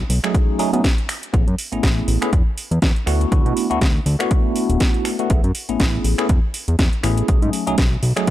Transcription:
0.09 B1, open hi-hat
0.23 F#3 A3 C#4 D#4 G#4, finger snap, closed hi-hat
0.34 kick, closed hi-hat
0.59 F#3 A3 C#4 D#4 G#4, open hi-hat
0.73 B2 F#3 A3 C#4 D#4 G#4, closed hi-hat
0.84 kick, snare, closed hi-hat
0.98 closed hi-hat
1.09 finger snap, open hi-hat
1.23 closed hi-hat
1.33 A1 A3 B3 C#4 E4 G#4, kick, closed hi-hat
1.47 F#2, closed hi-hat
1.58 open hi-hat
1.72 A1 A3 B3 C#4 E4 G#4, closed hi-hat
1.83 A1, kick, snare, closed hi-hat
2.08 A1, open hi-hat
2.21 A3 B3 C#4 E4 G#4, finger snap, closed hi-hat
2.33 E2, kick, closed hi-hat
2.58 open hi-hat
2.71 E2, closed hi-hat
2.82 E2, kick, snare, closed hi-hat
2.96 closed hi-hat
3.06 D2 A3 B3 D4 E4 F#4, finger snap, open hi-hat
3.21 closed hi-hat
3.31 D2 A3 B3 D4 E4 F#4, kick, closed hi-hat
3.46 B2, closed hi-hat
3.57 open hi-hat
3.70 D2 A3 B3 D4 E4 F#4, closed hi-hat
3.81 D2, kick, snare, closed hi-hat
4.06 D2, open hi-hat
4.19 A3 B3 D4 E4 F#4, finger snap, closed hi-hat
4.31 kick, closed hi-hat
4.56 open hi-hat
4.70 D1, closed hi-hat
4.80 kick, snare, closed hi-hat
4.94 closed hi-hat
5.05 finger snap, open hi-hat
5.19 A3 B3 D4 E4 F#4, closed hi-hat
5.30 A1 A3 E4, kick, closed hi-hat
5.44 F#2, closed hi-hat
5.55 open hi-hat
5.69 A1 A3 B3 C#4 E4 G#4, closed hi-hat
5.80 A1, kick, snare, closed hi-hat
6.04 A1, open hi-hat
6.18 A3 B3 C#4 E4 G#4, finger snap, closed hi-hat
6.29 E2, kick, closed hi-hat
6.54 open hi-hat
6.68 E2, closed hi-hat
6.79 E2, kick, snare, closed hi-hat
6.93 closed hi-hat
7.03 A1 A3 B3 C#4 E4 G#4, finger snap, open hi-hat
7.18 closed hi-hat
7.28 B1 F#3 A3 C#4 D#4 G#4, kick, closed hi-hat
7.42 G#2, closed hi-hat
7.53 open hi-hat
7.67 B1 F#3 A3 C#4 D#4 G#4, closed hi-hat
7.78 B1, kick, snare, closed hi-hat
8.03 B1, open hi-hat
8.16 F#3 A3 C#4 D#4 G#4, finger snap, closed hi-hat
8.27 closed hi-hat

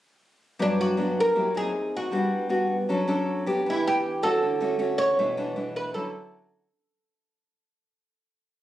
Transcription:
0.59 G2 F#3 B3 D4
0.81 F#4
0.97 F#3 B3 D4
1.20 A#4
1.35 F#3 A#3 E4 G4
1.55 C4 D#4 G#4
1.97 F#4
2.11 G3 B3 D4 F#4
2.49 B3 D4 F#4
2.89 F#3 C#4 D4 A4
3.08 C#4 D4 A4
3.46 B3 D4 G4
3.66 E3 E4
3.88 G4
4.23 A3 C#4 F#4 A4
4.43 D3
4.61 A3 C#4 F#4
4.79 A3 C#4 F#4
4.98 C#5
5.19 B2 E3 A3 D4
5.37 E3 A3 D4
5.56 E3 A3 D4
5.76 B4
5.94 D3 F#3 C#4 E4 A4

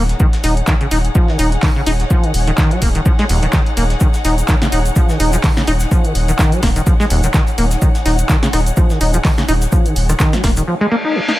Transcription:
Already playing: D#1 D#4 G#4 C#5 F#5
0.09 snare, closed hi-hat
0.20 D#3, kick, shaker
0.33 snare, closed hi-hat
0.44 D#1 D#4, snare, open hi-hat, shaker
0.57 closed hi-hat
0.67 D#3, kick, snare, clap, shaker
0.81 C#3, closed hi-hat
0.91 D#1 D#4, snare, open hi-hat, shaker
1.05 closed hi-hat
1.15 F3, kick, shaker
1.28 D#3, snare
1.39 D#1 D#4, open hi-hat, shaker
1.52 closed hi-hat
1.63 D#3, kick, snare, clap, open hi-hat
1.76 C#3
1.86 D#1 D#4, open hi-hat, shaker
2.00 snare, closed hi-hat
2.10 F3, kick, shaker
2.24 D#3, closed hi-hat
2.34 D#1, open hi-hat, shaker
2.47 D#3, closed hi-hat
2.58 D#3, kick, snare, clap, shaker
2.71 F#3, closed hi-hat
2.82 D#1 A#3, kick, open hi-hat, shaker
2.95 D#3, closed hi-hat
3.06 F3, kick, shaker
3.19 G#3, snare, closed hi-hat
3.29 D#1 D#2, open hi-hat, shaker
3.43 D#3, closed hi-hat
3.53 D#3, kick, snare, clap, shaker
3.66 closed hi-hat
3.77 D#1 A#3, open hi-hat, shaker
3.90 snare, closed hi-hat
4.00 D#3, kick, shaker
4.14 snare, closed hi-hat, shaker
4.25 D#1 D#4, snare, open hi-hat, shaker
4.38 closed hi-hat, shaker
4.48 D#3, kick, snare, clap, shaker
4.62 C#3, snare, closed hi-hat, shaker
4.72 D#1 D#4, open hi-hat, shaker
4.86 closed hi-hat, shaker
4.96 F3, kick, shaker
5.09 D#3, snare, shaker
5.20 D#1 D#4, open hi-hat, shaker
5.33 F3, closed hi-hat, shaker
5.44 D#3, kick, snare, clap, open hi-hat, shaker
5.57 C#3, snare, shaker
5.67 D#1 D#4, open hi-hat, shaker
5.80 snare, closed hi-hat, shaker
5.91 F3, kick, shaker
6.04 D#3, closed hi-hat, shaker
6.15 D#1, open hi-hat, shaker
6.28 D#3, closed hi-hat, shaker
6.39 D#3, kick, snare, clap, shaker
6.52 F#3, closed hi-hat, shaker
6.63 D#1 A#3, kick, cross-stick, snare, open hi-hat, shaker
6.76 D#3, closed hi-hat, shaker
6.87 F3, kick, shaker
7.00 G#3, snare, shaker
7.10 D#1 D#2, open hi-hat, shaker
7.23 D#3, closed hi-hat, shaker
7.34 D#3, kick, snare, clap, shaker
7.47 closed hi-hat, shaker
7.58 D#1 A#3, open hi-hat, shaker
7.71 snare, closed hi-hat, shaker
7.82 D#3, kick, shaker
7.95 snare, closed hi-hat, shaker
8.06 D#1 D#4, snare, open hi-hat, shaker
8.19 closed hi-hat, shaker
8.29 D#3, kick, snare, clap, shaker
8.43 C#3, snare, closed hi-hat, shaker
8.53 D#1 D#4, cross-stick, snare, open hi-hat, shaker
8.66 closed hi-hat, shaker
8.76 F3, kick, shaker
8.90 D#3, snare, shaker
9.01 D#1 D#4, open hi-hat, shaker
9.14 F3, closed hi-hat, shaker
9.25 D#3, kick, snare, clap, open hi-hat, shaker
9.38 C#3, snare, shaker
9.48 D#1 D#4, open hi-hat, shaker
9.62 snare, closed hi-hat, shaker
9.72 F3, kick, shaker
9.85 D#3, closed hi-hat, shaker
9.96 D#1, open hi-hat, shaker
10.09 D#3, cross-stick, closed hi-hat, shaker
10.20 D#3, kick, snare, clap, shaker
10.33 F#3, snare, closed hi-hat, shaker
10.44 D#1 A#3, kick, cross-stick, snare, open hi-hat, shaker
10.57 D#3, closed hi-hat, shaker
10.68 F3, reverse cymbal
10.81 G#3
10.91 A#3
11.05 D#4
11.15 D#3
11.28 D#4, snare

